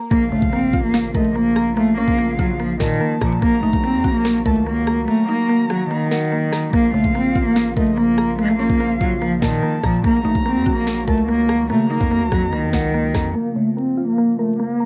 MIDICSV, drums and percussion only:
0, 0, Header, 1, 2, 480
1, 0, Start_track
1, 0, Key_signature, -5, "minor"
1, 0, Tempo, 413793
1, 130, Time_signature, 4, 2, 24, 8
1, 17231, End_track
2, 0, Start_track
2, 0, Title_t, "Drums"
2, 130, Note_on_c, 9, 36, 124
2, 130, Note_on_c, 9, 42, 80
2, 246, Note_off_c, 9, 36, 0
2, 246, Note_off_c, 9, 42, 0
2, 489, Note_on_c, 9, 36, 93
2, 605, Note_off_c, 9, 36, 0
2, 614, Note_on_c, 9, 42, 73
2, 730, Note_off_c, 9, 42, 0
2, 850, Note_on_c, 9, 36, 99
2, 850, Note_on_c, 9, 42, 86
2, 966, Note_off_c, 9, 36, 0
2, 966, Note_off_c, 9, 42, 0
2, 1089, Note_on_c, 9, 38, 124
2, 1092, Note_on_c, 9, 42, 81
2, 1205, Note_off_c, 9, 38, 0
2, 1208, Note_off_c, 9, 42, 0
2, 1329, Note_on_c, 9, 36, 101
2, 1445, Note_off_c, 9, 36, 0
2, 1445, Note_on_c, 9, 42, 91
2, 1561, Note_off_c, 9, 42, 0
2, 1808, Note_on_c, 9, 42, 82
2, 1809, Note_on_c, 9, 37, 104
2, 1924, Note_off_c, 9, 42, 0
2, 1925, Note_off_c, 9, 37, 0
2, 2050, Note_on_c, 9, 42, 79
2, 2166, Note_off_c, 9, 42, 0
2, 2409, Note_on_c, 9, 36, 92
2, 2525, Note_off_c, 9, 36, 0
2, 2534, Note_on_c, 9, 42, 70
2, 2650, Note_off_c, 9, 42, 0
2, 2770, Note_on_c, 9, 36, 98
2, 2770, Note_on_c, 9, 42, 88
2, 2886, Note_off_c, 9, 36, 0
2, 2886, Note_off_c, 9, 42, 0
2, 3012, Note_on_c, 9, 42, 78
2, 3128, Note_off_c, 9, 42, 0
2, 3249, Note_on_c, 9, 36, 99
2, 3249, Note_on_c, 9, 38, 113
2, 3249, Note_on_c, 9, 42, 57
2, 3365, Note_off_c, 9, 36, 0
2, 3365, Note_off_c, 9, 38, 0
2, 3365, Note_off_c, 9, 42, 0
2, 3370, Note_on_c, 9, 42, 55
2, 3486, Note_off_c, 9, 42, 0
2, 3728, Note_on_c, 9, 42, 82
2, 3729, Note_on_c, 9, 36, 97
2, 3729, Note_on_c, 9, 37, 102
2, 3844, Note_off_c, 9, 42, 0
2, 3845, Note_off_c, 9, 36, 0
2, 3845, Note_off_c, 9, 37, 0
2, 3857, Note_on_c, 9, 42, 94
2, 3970, Note_off_c, 9, 42, 0
2, 3970, Note_on_c, 9, 36, 121
2, 3970, Note_on_c, 9, 42, 79
2, 4086, Note_off_c, 9, 36, 0
2, 4086, Note_off_c, 9, 42, 0
2, 4329, Note_on_c, 9, 36, 97
2, 4445, Note_off_c, 9, 36, 0
2, 4455, Note_on_c, 9, 42, 71
2, 4571, Note_off_c, 9, 42, 0
2, 4690, Note_on_c, 9, 36, 101
2, 4690, Note_on_c, 9, 42, 91
2, 4806, Note_off_c, 9, 36, 0
2, 4806, Note_off_c, 9, 42, 0
2, 4929, Note_on_c, 9, 38, 121
2, 4932, Note_on_c, 9, 42, 80
2, 5045, Note_off_c, 9, 38, 0
2, 5048, Note_off_c, 9, 42, 0
2, 5169, Note_on_c, 9, 36, 97
2, 5285, Note_off_c, 9, 36, 0
2, 5286, Note_on_c, 9, 42, 86
2, 5402, Note_off_c, 9, 42, 0
2, 5648, Note_on_c, 9, 42, 86
2, 5649, Note_on_c, 9, 37, 100
2, 5764, Note_off_c, 9, 42, 0
2, 5765, Note_off_c, 9, 37, 0
2, 5891, Note_on_c, 9, 42, 82
2, 6007, Note_off_c, 9, 42, 0
2, 6375, Note_on_c, 9, 42, 74
2, 6491, Note_off_c, 9, 42, 0
2, 6610, Note_on_c, 9, 37, 100
2, 6610, Note_on_c, 9, 42, 87
2, 6726, Note_off_c, 9, 37, 0
2, 6726, Note_off_c, 9, 42, 0
2, 6852, Note_on_c, 9, 42, 78
2, 6968, Note_off_c, 9, 42, 0
2, 7090, Note_on_c, 9, 38, 114
2, 7091, Note_on_c, 9, 42, 67
2, 7206, Note_off_c, 9, 38, 0
2, 7206, Note_off_c, 9, 42, 0
2, 7206, Note_on_c, 9, 42, 88
2, 7322, Note_off_c, 9, 42, 0
2, 7568, Note_on_c, 9, 42, 82
2, 7569, Note_on_c, 9, 37, 99
2, 7569, Note_on_c, 9, 38, 75
2, 7684, Note_off_c, 9, 42, 0
2, 7685, Note_off_c, 9, 37, 0
2, 7685, Note_off_c, 9, 38, 0
2, 7697, Note_on_c, 9, 42, 89
2, 7810, Note_on_c, 9, 36, 122
2, 7811, Note_off_c, 9, 42, 0
2, 7811, Note_on_c, 9, 42, 77
2, 7926, Note_off_c, 9, 36, 0
2, 7927, Note_off_c, 9, 42, 0
2, 8169, Note_on_c, 9, 36, 95
2, 8285, Note_off_c, 9, 36, 0
2, 8294, Note_on_c, 9, 42, 73
2, 8410, Note_off_c, 9, 42, 0
2, 8530, Note_on_c, 9, 42, 88
2, 8531, Note_on_c, 9, 36, 97
2, 8646, Note_off_c, 9, 42, 0
2, 8647, Note_off_c, 9, 36, 0
2, 8770, Note_on_c, 9, 38, 121
2, 8773, Note_on_c, 9, 42, 79
2, 8886, Note_off_c, 9, 38, 0
2, 8889, Note_off_c, 9, 42, 0
2, 9009, Note_on_c, 9, 36, 99
2, 9125, Note_off_c, 9, 36, 0
2, 9126, Note_on_c, 9, 42, 91
2, 9242, Note_off_c, 9, 42, 0
2, 9488, Note_on_c, 9, 42, 82
2, 9489, Note_on_c, 9, 37, 101
2, 9604, Note_off_c, 9, 42, 0
2, 9605, Note_off_c, 9, 37, 0
2, 9732, Note_on_c, 9, 42, 81
2, 9848, Note_off_c, 9, 42, 0
2, 10089, Note_on_c, 9, 36, 95
2, 10205, Note_off_c, 9, 36, 0
2, 10215, Note_on_c, 9, 42, 75
2, 10331, Note_off_c, 9, 42, 0
2, 10451, Note_on_c, 9, 36, 102
2, 10451, Note_on_c, 9, 42, 88
2, 10567, Note_off_c, 9, 36, 0
2, 10567, Note_off_c, 9, 42, 0
2, 10693, Note_on_c, 9, 42, 81
2, 10809, Note_off_c, 9, 42, 0
2, 10929, Note_on_c, 9, 36, 101
2, 10930, Note_on_c, 9, 38, 113
2, 10930, Note_on_c, 9, 42, 57
2, 11045, Note_off_c, 9, 36, 0
2, 11046, Note_off_c, 9, 38, 0
2, 11046, Note_off_c, 9, 42, 0
2, 11050, Note_on_c, 9, 42, 56
2, 11166, Note_off_c, 9, 42, 0
2, 11407, Note_on_c, 9, 42, 84
2, 11409, Note_on_c, 9, 36, 95
2, 11409, Note_on_c, 9, 37, 99
2, 11523, Note_off_c, 9, 42, 0
2, 11525, Note_off_c, 9, 36, 0
2, 11525, Note_off_c, 9, 37, 0
2, 11536, Note_on_c, 9, 42, 90
2, 11650, Note_off_c, 9, 42, 0
2, 11650, Note_on_c, 9, 36, 123
2, 11650, Note_on_c, 9, 42, 80
2, 11766, Note_off_c, 9, 36, 0
2, 11766, Note_off_c, 9, 42, 0
2, 12009, Note_on_c, 9, 36, 92
2, 12125, Note_off_c, 9, 36, 0
2, 12134, Note_on_c, 9, 42, 71
2, 12250, Note_off_c, 9, 42, 0
2, 12370, Note_on_c, 9, 36, 104
2, 12370, Note_on_c, 9, 42, 91
2, 12486, Note_off_c, 9, 36, 0
2, 12486, Note_off_c, 9, 42, 0
2, 12609, Note_on_c, 9, 38, 116
2, 12612, Note_on_c, 9, 42, 76
2, 12725, Note_off_c, 9, 38, 0
2, 12728, Note_off_c, 9, 42, 0
2, 12849, Note_on_c, 9, 36, 102
2, 12965, Note_off_c, 9, 36, 0
2, 12966, Note_on_c, 9, 42, 88
2, 13082, Note_off_c, 9, 42, 0
2, 13327, Note_on_c, 9, 42, 83
2, 13329, Note_on_c, 9, 37, 101
2, 13443, Note_off_c, 9, 42, 0
2, 13445, Note_off_c, 9, 37, 0
2, 13570, Note_on_c, 9, 42, 76
2, 13686, Note_off_c, 9, 42, 0
2, 13928, Note_on_c, 9, 36, 96
2, 14044, Note_off_c, 9, 36, 0
2, 14054, Note_on_c, 9, 42, 75
2, 14170, Note_off_c, 9, 42, 0
2, 14290, Note_on_c, 9, 36, 103
2, 14290, Note_on_c, 9, 37, 104
2, 14290, Note_on_c, 9, 42, 90
2, 14406, Note_off_c, 9, 36, 0
2, 14406, Note_off_c, 9, 37, 0
2, 14406, Note_off_c, 9, 42, 0
2, 14532, Note_on_c, 9, 42, 80
2, 14648, Note_off_c, 9, 42, 0
2, 14768, Note_on_c, 9, 36, 98
2, 14769, Note_on_c, 9, 38, 110
2, 14770, Note_on_c, 9, 42, 67
2, 14884, Note_off_c, 9, 36, 0
2, 14885, Note_off_c, 9, 38, 0
2, 14885, Note_off_c, 9, 42, 0
2, 14885, Note_on_c, 9, 42, 90
2, 15001, Note_off_c, 9, 42, 0
2, 15247, Note_on_c, 9, 42, 82
2, 15248, Note_on_c, 9, 36, 93
2, 15248, Note_on_c, 9, 37, 104
2, 15248, Note_on_c, 9, 38, 73
2, 15363, Note_off_c, 9, 42, 0
2, 15364, Note_off_c, 9, 36, 0
2, 15364, Note_off_c, 9, 37, 0
2, 15364, Note_off_c, 9, 38, 0
2, 15375, Note_on_c, 9, 42, 92
2, 15491, Note_off_c, 9, 42, 0
2, 17231, End_track
0, 0, End_of_file